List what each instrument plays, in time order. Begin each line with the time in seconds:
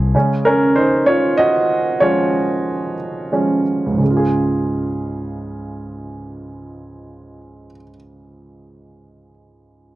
Already playing: fingered electric bass C2, grand piano F3 A#3 C#4 G#4
0.15 grand piano C#3 G#3 C#4
0.45 grand piano C#4 A#4
0.76 grand piano D#4 C5
1.06 grand piano F4 C#5
1.37 grand piano F#4 D#5
2.00 grand piano F3 G#3 C#4 F4 C#5
3.32 grand piano F3 G#3 C#4
3.86 grand piano C#2
3.92 grand piano G#2
3.98 grand piano C#3
4.04 grand piano G#3
4.10 grand piano F4
4.17 grand piano G#4